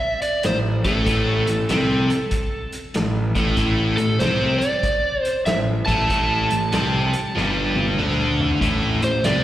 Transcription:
0.00 0.22 E5 medium
0.22 0.45 D5 medium
0.22 closed hi-hat medium
0.43 0.83 A1 medium
0.43 0.77 A2 medium
0.43 0.56 C5 medium
0.43 snare loud
0.43 closed hi-hat medium
0.84 1.05 A1 medium
0.84 1.04 A2 medium
0.84 1.05 A3 medium
0.84 2.70 A4 medium
0.84 kick loud
0.84 closed hi-hat medium
1.06 1.45 A1 medium
1.06 1.46 A2 medium
1.06 1.46 A3 medium
1.06 kick medium
1.06 closed hi-hat medium
1.47 1.68 A1 medium
1.47 1.65 A2 medium
1.47 closed hi-hat medium
1.69 2.08 C2 medium
1.69 2.09 C3 medium
1.69 2.09 C4 medium
1.69 snare medium
1.69 closed hi-hat medium
2.10 closed hi-hat medium
2.31 kick loud
2.31 closed hi-hat medium
2.72 closed hi-hat medium
2.94 3.34 A1 medium
2.94 3.28 A2 medium
2.94 snare medium
2.94 closed hi-hat medium
3.35 3.56 A1 medium
3.35 3.56 A2 medium
3.35 3.57 A3 medium
3.35 kick medium
3.35 closed hi-hat soft
3.57 3.96 A1 medium
3.57 3.98 A2 medium
3.57 3.98 A3 medium
3.57 kick medium
3.57 closed hi-hat medium
3.97 4.19 A1 medium
3.97 4.17 A2 medium
3.97 4.19 A4 medium
3.97 closed hi-hat soft
4.19 4.59 C2 medium
4.19 4.61 C3 medium
4.19 4.62 C4 medium
4.19 4.58 C5 medium
4.19 snare loud
4.19 closed hi-hat medium
4.59 5.22 D5 medium
4.59 closed hi-hat medium
4.83 kick medium
4.83 closed hi-hat medium
5.22 5.46 C5 medium
5.22 closed hi-hat medium
5.46 5.85 A1 medium
5.46 5.81 A2 medium
5.46 5.57 E5 medium
5.46 snare loud
5.46 closed hi-hat medium
5.86 6.08 A1 medium
5.86 6.08 A2 medium
5.86 6.09 A3 loud
5.86 7.93 A5 medium
5.86 kick medium
5.86 closed hi-hat medium
6.09 6.48 A1 medium
6.09 6.49 A2 medium
6.09 6.50 A3 loud
6.09 kick medium
6.09 closed hi-hat medium
6.50 6.72 A1 medium
6.50 6.69 A2 medium
6.50 closed hi-hat medium
6.72 7.11 C2 medium
6.72 7.12 C3 medium
6.72 7.13 C4 medium
6.72 snare loud
6.72 closed hi-hat medium
7.13 closed hi-hat medium
7.35 7.95 G1 medium
7.35 7.97 G2 medium
7.35 7.98 G3 medium
7.35 snare medium
7.76 high tom medium
7.88 high tom medium
7.98 8.57 D2 medium
7.98 8.60 D3 medium
7.98 8.60 D4 medium
7.98 mid tom medium
8.40 floor tom medium
8.51 floor tom medium
8.61 8.99 A1 medium
8.61 9.01 A2 medium
8.61 9.01 A3 medium
8.61 kick medium
8.61 closed hi-hat medium
9.02 9.22 A1 medium
9.02 9.19 A2 medium
9.02 9.25 C5 medium
9.02 closed hi-hat medium
9.23 9.44 C2 medium
9.23 9.44 C3 medium
9.23 9.44 C4 medium
9.23 9.44 D5 medium
9.23 snare loud
9.23 closed hi-hat medium

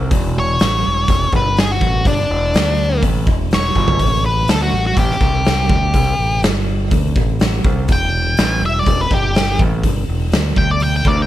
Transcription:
0.11 0.56 E1 loud
0.11 kick loud
0.11 open hi-hat medium
0.40 1.32 C#5 loud
0.59 0.83 A1 medium
0.59 snare loud
0.59 open hi-hat medium
0.86 1.08 E1 medium
1.08 1.31 E1 medium
1.08 kick loud
1.08 open hi-hat soft
1.33 1.78 G1 medium
1.33 1.58 B4 medium
1.33 kick medium
1.57 1.72 G#4 medium
1.57 snare loud
1.57 open hi-hat medium
1.72 2.06 F#4 medium
1.81 2.04 A1 loud
1.81 kick loud
2.05 2.28 G1 medium
2.05 3.01 D4 loud
2.05 kick loud
2.05 open hi-hat medium
2.30 2.53 E1 medium
2.54 3.00 D2 medium
2.54 snare loud
2.54 open hi-hat medium
3.03 3.26 A1 medium
3.03 kick medium
3.03 open hi-hat medium
3.27 3.72 E1 medium
3.27 kick loud
3.51 4.24 C#5 loud
3.51 snare loud
3.51 open hi-hat medium
3.75 3.98 G1 loud
3.75 kick medium
3.88 floor tom medium
4.00 4.45 A1 medium
4.00 kick loud
4.00 open hi-hat medium
4.26 4.49 B4 medium
4.48 4.71 D2 medium
4.48 4.61 A4 medium
4.48 snare loud
4.48 open hi-hat medium
4.63 4.85 F#4 medium
4.72 4.95 A1 medium
4.87 4.98 F#4 medium
4.97 5.20 A1 medium
4.97 6.40 G4 medium
4.97 kick loud
4.97 open hi-hat soft
5.11 snare soft
5.21 5.67 C2 medium
5.21 kick loud
5.45 snare medium
5.45 open hi-hat soft
5.69 5.92 D2 loud
5.69 kick loud
5.94 6.17 C2 loud
5.94 kick loud
5.94 open hi-hat medium
6.19 6.42 A1 medium
6.42 6.88 G1 medium
6.42 snare loud
6.42 open hi-hat medium
6.91 7.14 D2 medium
6.91 kick loud
6.91 open hi-hat soft
7.16 7.61 A1 medium
7.16 kick loud
7.40 snare loud
7.40 open hi-hat medium
7.64 7.87 C2 medium
7.64 kick loud
7.88 8.34 E1 medium
7.88 kick loud
7.88 open hi-hat medium
7.92 8.62 G5 loud
8.37 8.61 A1 loud
8.37 snare loud
8.37 open hi-hat medium
8.62 8.85 E1 medium
8.62 8.79 E5 medium
8.79 9.01 D5 medium
8.86 9.09 E1 medium
8.86 kick medium
8.86 open hi-hat soft
9.01 9.12 B4 medium
9.11 9.56 G1 medium
9.11 9.60 G4 loud
9.11 kick loud
9.35 snare medium
9.35 open hi-hat medium
9.59 9.82 A1 medium
9.59 kick loud
9.84 10.07 G1 medium
9.84 kick loud
9.84 open hi-hat medium
10.08 10.31 E1 medium
10.32 10.56 D2 medium
10.32 snare loud
10.32 open hi-hat medium
10.56 11.02 D2 medium
10.56 10.69 G5 medium
10.56 kick medium
10.71 10.82 D5 medium
10.80 10.94 G5 medium
10.80 open hi-hat soft
10.96 11.07 G5 loud
11.05 11.27 D2 medium
11.05 11.19 D5 medium
11.05 kick loud
11.22 11.27 G5 medium

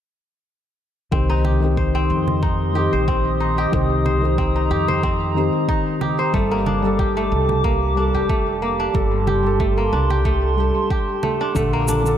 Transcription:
1.11 2.05 C2 medium
1.11 1.58 D#3 medium
1.11 1.94 C4 medium
1.11 1.58 C4 medium
1.11 6.30 G4 medium
1.11 1.59 G4 medium
1.11 6.30 D#5 medium
1.11 3.71 C6 medium
1.11 6.30 D#6 medium
1.11 kick medium
1.30 2.42 D#4 medium
1.45 2.75 G4 medium
1.45 low conga medium
1.60 2.71 D#3 medium
1.60 2.72 C4 medium
1.64 2.73 G4 medium
1.77 2.92 C5 medium
1.77 kick loud
1.95 3.07 C4 medium
2.10 2.87 F2 medium
2.27 low conga medium
2.43 3.40 D#4 medium
2.43 kick medium
2.73 3.68 D#3 medium
2.73 3.70 C4 medium
2.73 3.58 G4 medium
2.77 3.71 G4 medium
2.93 3.68 A#1 medium
2.93 4.05 C5 medium
3.08 4.38 C4 medium
3.08 kick medium
3.40 4.55 D#4 medium
3.58 4.70 G4 medium
3.72 4.66 C2 medium
3.72 4.19 D#3 medium
3.72 4.19 C4 medium
3.72 4.20 G4 loud
3.72 6.32 A#5 medium
3.72 kick medium
4.06 4.88 C5 medium
4.06 low conga medium
4.21 5.32 D#3 medium
4.21 5.33 C4 medium
4.21 5.33 G4 medium
4.38 5.03 C4 medium
4.38 kick loud
4.56 5.68 D#4 medium
4.71 5.48 F2 medium
4.71 6.01 G4 medium
4.88 6.07 C5 medium
4.88 low conga medium
5.03 6.83 C4 medium
5.03 kick loud
5.34 6.29 D#3 medium
5.34 6.30 C4 medium
5.34 6.31 G4 medium
5.69 6.73 D#4 medium
5.69 kick loud
6.01 6.99 G4 medium
6.01 low conga medium
6.19 7.38 C5 medium
6.33 7.26 G1 medium
6.33 6.79 G3 medium
6.33 6.57 A3 medium
6.33 11.52 G4 medium
6.33 6.81 A4 medium
6.33 12.18 A5 medium
6.33 8.92 D6 medium
6.33 kick loud
6.51 7.23 A#3 medium
6.66 7.97 D4 medium
6.66 low conga medium
6.82 7.93 G3 medium
6.82 7.94 A4 medium
6.99 8.14 G4 medium
6.99 kick loud
7.17 7.70 A3 medium
7.32 8.08 C2 medium
7.49 low conga medium
7.64 8.36 A#3 medium
7.64 kick loud
7.95 8.90 G3 medium
7.95 8.79 D4 medium
7.95 8.92 A4 medium
8.14 8.90 F1 medium
8.14 9.27 G4 medium
8.29 8.68 A3 medium
8.29 kick loud
8.62 9.66 A#3 medium
8.80 9.92 D4 medium
8.94 9.87 G1 medium
8.94 9.40 G3 medium
8.94 9.41 A4 medium
8.94 11.53 C6 medium
8.94 kick loud
9.27 10.10 G4 medium
9.27 low conga medium
9.43 10.53 G3 medium
9.43 10.55 A4 medium
9.60 9.84 A3 medium
9.60 kick loud
9.78 10.31 A#3 medium
9.93 10.69 C2 medium
9.93 11.40 D4 medium
10.10 10.90 G4 medium
10.10 low conga medium
10.25 11.23 A3 medium
10.25 kick loud
10.56 11.51 G3 medium
10.56 11.53 A4 medium
10.90 12.18 G4 medium
10.90 kick loud
11.23 11.56 A3 medium
11.23 low conga medium
11.41 11.88 D4 medium
11.55 12.18 A#1 medium
11.55 12.01 D3 medium
11.55 11.79 A3 medium
11.55 12.18 F4 medium
11.55 12.02 A4 medium
11.55 12.18 D6 medium
11.55 kick medium
11.55 shaker soft
11.73 12.18 A#3 medium
11.88 12.18 D4 medium
11.88 low conga medium
11.88 shaker medium
12.04 12.18 D3 medium
12.04 shaker soft
12.08 12.18 A4 medium

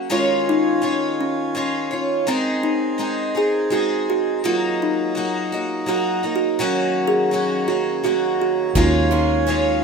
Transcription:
0.00 0.10 A#3 medium
0.00 0.11 F#4 medium
0.10 0.82 D#3 medium
0.10 2.25 D#3 medium
0.10 0.81 G#3 medium
0.10 0.81 C#4 medium
0.10 0.82 F4 medium
0.10 0.48 F4 loud
0.10 2.26 F4 medium
0.10 0.83 C#5 medium
0.10 2.25 C#5 medium
0.10 4.40 G#5 medium
0.49 1.22 D#4 loud
0.81 1.53 G#3 medium
0.81 1.54 C#4 medium
0.81 1.55 F4 medium
0.81 1.55 C#5 medium
1.21 2.24 C#4 medium
1.55 1.91 G#3 medium
1.55 1.91 C#4 medium
1.55 1.91 F4 medium
1.55 1.90 C#5 medium
1.91 2.28 C#4 soft
1.91 2.28 F4 soft
1.91 2.27 C#5 medium
2.25 4.43 D#3 medium
2.25 2.97 G#3 medium
2.25 2.98 C4 medium
2.25 2.65 C4 loud
2.25 4.40 D#4 medium
2.25 2.99 D#4 medium
2.25 2.99 G#4 medium
2.25 4.41 C5 medium
2.63 3.37 D#4 loud
2.98 3.34 G#3 medium
2.98 3.35 C4 medium
2.98 3.34 D#4 medium
2.98 3.34 G#4 medium
3.35 3.71 C4 soft
3.35 3.71 D#4 soft
3.35 3.71 G#4 soft
3.35 3.73 G#4 loud
3.70 4.43 G#3 medium
3.70 4.43 C4 medium
3.70 4.44 D#4 medium
3.70 4.08 F#4 loud
3.70 4.44 G#4 medium
4.10 4.45 F#4 loud
4.42 5.15 D#3 medium
4.42 8.71 F#3 medium
4.42 5.15 F#3 medium
4.42 5.16 A#3 medium
4.42 5.16 D#4 medium
4.42 4.81 F4 loud
4.42 6.57 D#5 medium
4.42 8.71 A#5 medium
4.82 5.92 D#4 loud
5.15 5.51 F#3 medium
5.15 5.52 A#3 medium
5.15 5.52 D#4 medium
5.15 5.51 F#4 medium
5.52 5.86 A#3 soft
5.52 5.87 D#4 soft
5.52 5.88 F#4 medium
5.86 6.23 F#3 medium
5.86 6.23 A#3 medium
5.86 6.23 D#4 medium
5.86 6.34 F#4 loud
5.86 6.22 F#4 medium
6.23 6.59 A#3 soft
6.23 6.60 D#4 medium
6.23 6.59 F#4 medium
6.36 7.10 F#4 loud
6.59 7.31 D#3 medium
6.59 8.73 D#3 medium
6.59 7.30 F#3 medium
6.59 7.31 A#3 medium
6.59 7.33 C#4 medium
6.59 7.32 F#4 medium
6.59 9.84 C#5 medium
7.07 7.69 G#4 loud
7.31 7.67 F#3 medium
7.31 7.68 A#3 medium
7.31 7.68 C#4 medium
7.31 7.66 F#4 medium
7.68 8.03 A#3 soft
7.68 8.04 C#4 soft
7.68 8.03 F#4 medium
8.03 8.75 F#3 medium
8.03 8.76 A#3 medium
8.03 8.76 C#4 medium
8.03 8.40 F#4 loud
8.03 8.77 F#4 medium
8.42 8.78 F#4 loud
8.75 9.84 D#2 loud
8.75 9.84 D#3 medium
8.75 9.48 D#3 medium
8.75 9.47 G#3 medium
8.75 9.47 C#4 medium
8.75 9.84 F4 medium
8.75 9.13 F4 loud
8.75 9.48 F4 medium
8.75 9.49 C#5 medium
8.75 9.84 G#5 medium
8.75 kick medium
8.75 ride soft
9.11 9.84 G#3 medium
9.11 9.45 C#4 medium
9.11 9.84 D#4 loud
9.11 9.84 F4 medium
9.47 9.84 G#3 medium
9.47 9.84 C#4 medium
9.47 9.83 F4 medium
9.47 9.81 C#5 medium
9.47 ride medium

